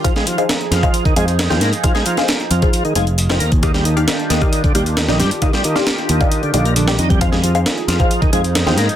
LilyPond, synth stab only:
\new Staff \with { instrumentName = "Synth stab" } { \time 4/4 \key f \dorian \tempo 4 = 134 <ees' aes' c'' f''>16 r8 <ees' aes' c'' f''>16 r8. <ees' aes' c'' f''>16 r8 <ees' aes' c'' f''>16 r8 <ees' aes' c'' g''>16 r8 | <ees' aes' c'' f''>16 r8 <ees' aes' c'' f''>16 r8. <ees' aes' c'' f''>16 r8 <ees' aes' c'' f''>16 r8 <ees' aes' c'' g''>16 r8 | <ees' g' d'' f''>16 r8 <ees' g' d'' f''>16 r8. <ees' g' d'' f''>16 r8 <ees' g' d'' f''>16 r8 <ees' g' d'' g''>16 r8 | <ees' g' d'' f''>16 r8 <ees' g' d'' f''>16 r8. <ees' g' d'' f''>16 r8 <ees' g' d'' f''>16 r8 <ees' g' d'' g''>16 r8 |
<ees' aes' c'' f''>16 r8 <ees' aes' c'' f''>16 r8. <ees' aes' c'' f''>16 r8 <ees' aes' c'' f''>16 r8 <ees' aes' c'' g''>16 r8 | }